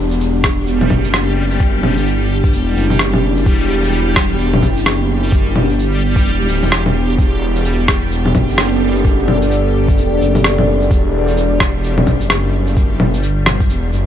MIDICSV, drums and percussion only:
0, 0, Header, 1, 2, 480
1, 0, Start_track
1, 0, Key_signature, 1, "minor"
1, 0, Tempo, 465116
1, 1656, Time_signature, 4, 2, 24, 8
1, 14510, End_track
2, 0, Start_track
2, 0, Title_t, "Drums"
2, 115, Note_on_c, 9, 82, 57
2, 211, Note_off_c, 9, 82, 0
2, 211, Note_on_c, 9, 82, 57
2, 314, Note_off_c, 9, 82, 0
2, 453, Note_on_c, 9, 37, 98
2, 454, Note_on_c, 9, 36, 100
2, 556, Note_off_c, 9, 37, 0
2, 557, Note_off_c, 9, 36, 0
2, 691, Note_on_c, 9, 82, 54
2, 794, Note_off_c, 9, 82, 0
2, 837, Note_on_c, 9, 61, 59
2, 931, Note_off_c, 9, 61, 0
2, 931, Note_on_c, 9, 61, 59
2, 931, Note_on_c, 9, 82, 55
2, 934, Note_on_c, 9, 36, 57
2, 1034, Note_off_c, 9, 61, 0
2, 1034, Note_off_c, 9, 82, 0
2, 1037, Note_off_c, 9, 36, 0
2, 1076, Note_on_c, 9, 82, 55
2, 1173, Note_on_c, 9, 37, 97
2, 1179, Note_off_c, 9, 82, 0
2, 1277, Note_off_c, 9, 37, 0
2, 1556, Note_on_c, 9, 82, 32
2, 1650, Note_off_c, 9, 82, 0
2, 1650, Note_on_c, 9, 82, 56
2, 1653, Note_on_c, 9, 36, 116
2, 1753, Note_off_c, 9, 82, 0
2, 1757, Note_off_c, 9, 36, 0
2, 1891, Note_on_c, 9, 61, 58
2, 1994, Note_off_c, 9, 61, 0
2, 2036, Note_on_c, 9, 82, 56
2, 2133, Note_off_c, 9, 82, 0
2, 2133, Note_on_c, 9, 82, 58
2, 2236, Note_off_c, 9, 82, 0
2, 2517, Note_on_c, 9, 82, 30
2, 2518, Note_on_c, 9, 36, 102
2, 2611, Note_off_c, 9, 82, 0
2, 2611, Note_on_c, 9, 82, 55
2, 2621, Note_off_c, 9, 36, 0
2, 2714, Note_off_c, 9, 82, 0
2, 2850, Note_on_c, 9, 82, 55
2, 2953, Note_off_c, 9, 82, 0
2, 2996, Note_on_c, 9, 61, 35
2, 2996, Note_on_c, 9, 82, 56
2, 3089, Note_on_c, 9, 37, 100
2, 3099, Note_off_c, 9, 61, 0
2, 3099, Note_off_c, 9, 82, 0
2, 3193, Note_off_c, 9, 37, 0
2, 3235, Note_on_c, 9, 61, 59
2, 3338, Note_off_c, 9, 61, 0
2, 3477, Note_on_c, 9, 82, 32
2, 3574, Note_off_c, 9, 82, 0
2, 3574, Note_on_c, 9, 36, 118
2, 3574, Note_on_c, 9, 82, 56
2, 3677, Note_off_c, 9, 36, 0
2, 3677, Note_off_c, 9, 82, 0
2, 3961, Note_on_c, 9, 82, 55
2, 4055, Note_off_c, 9, 82, 0
2, 4055, Note_on_c, 9, 82, 57
2, 4158, Note_off_c, 9, 82, 0
2, 4294, Note_on_c, 9, 36, 108
2, 4295, Note_on_c, 9, 37, 106
2, 4397, Note_off_c, 9, 36, 0
2, 4398, Note_off_c, 9, 37, 0
2, 4535, Note_on_c, 9, 82, 54
2, 4638, Note_off_c, 9, 82, 0
2, 4681, Note_on_c, 9, 61, 54
2, 4774, Note_on_c, 9, 36, 61
2, 4776, Note_off_c, 9, 61, 0
2, 4776, Note_on_c, 9, 61, 55
2, 4776, Note_on_c, 9, 82, 54
2, 4877, Note_off_c, 9, 36, 0
2, 4879, Note_off_c, 9, 61, 0
2, 4879, Note_off_c, 9, 82, 0
2, 4920, Note_on_c, 9, 82, 54
2, 5017, Note_on_c, 9, 37, 105
2, 5024, Note_off_c, 9, 82, 0
2, 5120, Note_off_c, 9, 37, 0
2, 5401, Note_on_c, 9, 82, 31
2, 5494, Note_off_c, 9, 82, 0
2, 5494, Note_on_c, 9, 36, 120
2, 5494, Note_on_c, 9, 82, 52
2, 5597, Note_off_c, 9, 36, 0
2, 5597, Note_off_c, 9, 82, 0
2, 5734, Note_on_c, 9, 61, 55
2, 5838, Note_off_c, 9, 61, 0
2, 5879, Note_on_c, 9, 82, 53
2, 5976, Note_off_c, 9, 82, 0
2, 5976, Note_on_c, 9, 82, 53
2, 6079, Note_off_c, 9, 82, 0
2, 6357, Note_on_c, 9, 82, 29
2, 6358, Note_on_c, 9, 36, 103
2, 6453, Note_off_c, 9, 82, 0
2, 6453, Note_on_c, 9, 82, 52
2, 6461, Note_off_c, 9, 36, 0
2, 6556, Note_off_c, 9, 82, 0
2, 6694, Note_on_c, 9, 82, 52
2, 6797, Note_off_c, 9, 82, 0
2, 6842, Note_on_c, 9, 61, 34
2, 6842, Note_on_c, 9, 82, 51
2, 6935, Note_on_c, 9, 37, 106
2, 6945, Note_off_c, 9, 61, 0
2, 6945, Note_off_c, 9, 82, 0
2, 7038, Note_off_c, 9, 37, 0
2, 7080, Note_on_c, 9, 61, 56
2, 7184, Note_off_c, 9, 61, 0
2, 7321, Note_on_c, 9, 82, 30
2, 7416, Note_off_c, 9, 82, 0
2, 7416, Note_on_c, 9, 36, 110
2, 7416, Note_on_c, 9, 82, 51
2, 7519, Note_off_c, 9, 36, 0
2, 7519, Note_off_c, 9, 82, 0
2, 7800, Note_on_c, 9, 82, 52
2, 7895, Note_off_c, 9, 82, 0
2, 7895, Note_on_c, 9, 82, 53
2, 7998, Note_off_c, 9, 82, 0
2, 8135, Note_on_c, 9, 37, 97
2, 8137, Note_on_c, 9, 36, 101
2, 8238, Note_off_c, 9, 37, 0
2, 8240, Note_off_c, 9, 36, 0
2, 8376, Note_on_c, 9, 82, 52
2, 8479, Note_off_c, 9, 82, 0
2, 8520, Note_on_c, 9, 61, 54
2, 8614, Note_off_c, 9, 61, 0
2, 8614, Note_on_c, 9, 61, 57
2, 8614, Note_on_c, 9, 82, 49
2, 8617, Note_on_c, 9, 36, 57
2, 8718, Note_off_c, 9, 61, 0
2, 8718, Note_off_c, 9, 82, 0
2, 8720, Note_off_c, 9, 36, 0
2, 8758, Note_on_c, 9, 82, 52
2, 8854, Note_on_c, 9, 37, 101
2, 8861, Note_off_c, 9, 82, 0
2, 8957, Note_off_c, 9, 37, 0
2, 9240, Note_on_c, 9, 82, 30
2, 9337, Note_off_c, 9, 82, 0
2, 9337, Note_on_c, 9, 36, 109
2, 9337, Note_on_c, 9, 82, 53
2, 9440, Note_off_c, 9, 36, 0
2, 9440, Note_off_c, 9, 82, 0
2, 9577, Note_on_c, 9, 61, 57
2, 9680, Note_off_c, 9, 61, 0
2, 9721, Note_on_c, 9, 82, 53
2, 9814, Note_off_c, 9, 82, 0
2, 9814, Note_on_c, 9, 82, 53
2, 9917, Note_off_c, 9, 82, 0
2, 10200, Note_on_c, 9, 82, 29
2, 10201, Note_on_c, 9, 36, 97
2, 10295, Note_off_c, 9, 82, 0
2, 10295, Note_on_c, 9, 82, 52
2, 10304, Note_off_c, 9, 36, 0
2, 10399, Note_off_c, 9, 82, 0
2, 10539, Note_on_c, 9, 82, 50
2, 10642, Note_off_c, 9, 82, 0
2, 10684, Note_on_c, 9, 61, 36
2, 10684, Note_on_c, 9, 82, 50
2, 10778, Note_on_c, 9, 37, 95
2, 10787, Note_off_c, 9, 61, 0
2, 10787, Note_off_c, 9, 82, 0
2, 10882, Note_off_c, 9, 37, 0
2, 10922, Note_on_c, 9, 61, 57
2, 11025, Note_off_c, 9, 61, 0
2, 11161, Note_on_c, 9, 82, 30
2, 11255, Note_off_c, 9, 82, 0
2, 11255, Note_on_c, 9, 82, 51
2, 11257, Note_on_c, 9, 36, 109
2, 11358, Note_off_c, 9, 82, 0
2, 11361, Note_off_c, 9, 36, 0
2, 11639, Note_on_c, 9, 82, 55
2, 11735, Note_off_c, 9, 82, 0
2, 11735, Note_on_c, 9, 82, 55
2, 11839, Note_off_c, 9, 82, 0
2, 11974, Note_on_c, 9, 37, 97
2, 11977, Note_on_c, 9, 36, 97
2, 12077, Note_off_c, 9, 37, 0
2, 12081, Note_off_c, 9, 36, 0
2, 12216, Note_on_c, 9, 82, 53
2, 12319, Note_off_c, 9, 82, 0
2, 12361, Note_on_c, 9, 61, 62
2, 12455, Note_off_c, 9, 61, 0
2, 12455, Note_on_c, 9, 61, 61
2, 12455, Note_on_c, 9, 82, 52
2, 12457, Note_on_c, 9, 36, 55
2, 12558, Note_off_c, 9, 61, 0
2, 12558, Note_off_c, 9, 82, 0
2, 12560, Note_off_c, 9, 36, 0
2, 12598, Note_on_c, 9, 82, 52
2, 12693, Note_on_c, 9, 37, 97
2, 12701, Note_off_c, 9, 82, 0
2, 12796, Note_off_c, 9, 37, 0
2, 13076, Note_on_c, 9, 82, 31
2, 13172, Note_off_c, 9, 82, 0
2, 13172, Note_on_c, 9, 82, 55
2, 13176, Note_on_c, 9, 36, 108
2, 13275, Note_off_c, 9, 82, 0
2, 13279, Note_off_c, 9, 36, 0
2, 13414, Note_on_c, 9, 61, 63
2, 13517, Note_off_c, 9, 61, 0
2, 13558, Note_on_c, 9, 82, 56
2, 13654, Note_off_c, 9, 82, 0
2, 13654, Note_on_c, 9, 82, 57
2, 13757, Note_off_c, 9, 82, 0
2, 13893, Note_on_c, 9, 37, 98
2, 13893, Note_on_c, 9, 61, 60
2, 13997, Note_off_c, 9, 37, 0
2, 13997, Note_off_c, 9, 61, 0
2, 14038, Note_on_c, 9, 82, 31
2, 14039, Note_on_c, 9, 36, 100
2, 14136, Note_off_c, 9, 82, 0
2, 14136, Note_on_c, 9, 82, 58
2, 14143, Note_off_c, 9, 36, 0
2, 14239, Note_off_c, 9, 82, 0
2, 14376, Note_on_c, 9, 82, 55
2, 14479, Note_off_c, 9, 82, 0
2, 14510, End_track
0, 0, End_of_file